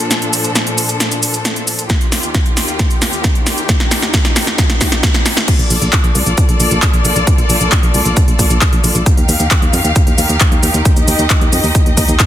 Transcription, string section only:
0.00 1.86 A#2 medium
0.00 1.86 F3 medium
0.00 1.86 D4 medium
0.00 1.86 A4 medium
1.90 5.45 D#2 medium
1.90 5.44 D#3 medium
1.90 3.67 F4 medium
1.90 5.44 G4 medium
3.69 5.46 D#4 medium
5.48 9.03 A#3 medium
5.48 9.03 F4 medium
5.48 9.03 A4 medium
5.48 9.03 D5 medium
9.06 12.26 D#3 medium
9.06 12.26 D#4 medium
9.06 12.26 G4 medium
9.06 10.84 F5 medium
10.85 12.26 D#5 medium

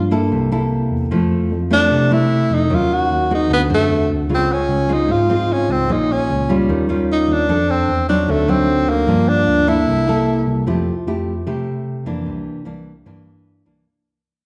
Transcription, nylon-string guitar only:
0.00 0.29 G2 medium
0.11 0.48 A#3 medium
0.11 0.48 E4 medium
0.11 0.49 A4 medium
0.32 1.09 C3 medium
0.52 1.08 A#3 medium
0.52 1.08 E4 medium
0.52 1.09 A4 medium
1.11 1.89 F3 medium
1.11 1.51 A3 medium
1.11 1.51 C4 medium
1.11 1.51 E4 medium
1.71 2.08 A3 medium
1.71 2.08 C4 medium
1.71 2.08 E4 medium
1.90 2.68 C3 medium
2.10 2.67 A3 medium
2.10 2.68 C4 medium
2.10 2.68 E4 medium
2.70 3.48 D#3 medium
2.70 3.27 F#3 medium
2.70 3.27 C#4 soft
3.31 3.67 G#3 medium
3.31 3.67 C4 medium
3.31 3.68 F#4 medium
3.50 4.28 D3 medium
3.70 4.27 C4 medium
3.70 4.27 F#4 medium
4.29 5.08 C#3 medium
4.29 4.86 G#3 soft
4.29 4.87 F4 medium
4.89 5.26 G#3 medium
4.89 5.26 C4 medium
4.89 5.26 F4 medium
5.08 5.87 G#2 medium
5.30 5.86 G#3 medium
5.30 5.86 C4 medium
5.30 5.87 F4 medium
5.89 6.67 A#2 medium
5.89 6.29 G#3 medium
5.89 6.29 C#4 medium
5.89 6.29 F4 medium
6.49 6.86 G3 medium
6.49 6.86 C#4 medium
6.49 6.86 F4 medium
6.69 7.47 D#3 medium
6.89 7.46 G3 medium
6.89 7.46 C#4 medium
6.89 7.46 F4 medium
7.49 7.88 C4 medium
7.49 7.89 D4 medium
7.49 7.89 A4 medium
8.09 8.45 F#3 medium
8.09 8.46 C4 medium
8.09 8.46 D#4 medium
8.28 9.06 D3 medium
8.48 9.05 F#3 medium
8.48 9.05 C4 medium
8.48 9.05 D#4 medium
9.08 9.86 G2 medium
9.08 9.64 F3 soft
9.08 9.65 A#3 medium
9.08 9.65 D4 medium
9.67 10.04 A#3 medium
9.67 10.04 E4 medium
9.67 10.04 A4 medium
9.88 10.65 C3 medium
10.08 10.64 A#3 medium
10.08 10.64 E4 medium
10.08 10.65 A4 medium
10.67 11.45 F3 medium
10.67 10.93 A3 medium
10.67 10.93 E4 medium
10.67 10.93 G4 medium
11.07 11.33 A3 soft
11.07 11.33 E4 soft
11.07 11.33 G4 medium
11.47 12.24 C3 medium
11.47 12.03 A3 soft
11.47 12.03 E4 medium
11.47 12.03 G4 medium
12.06 12.63 E3 medium
12.06 12.63 A#3 medium
12.06 12.63 D4 medium
12.26 13.04 C3 medium
12.65 12.91 E3 medium
12.65 12.92 A#3 medium
12.65 12.92 D4 medium
13.06 13.83 G2 medium
13.06 13.62 E3 medium
13.06 13.63 A#3 soft
13.06 13.63 D4 medium
13.66 13.84 E3 medium
13.66 13.84 A#3 soft
13.66 13.84 D4 medium

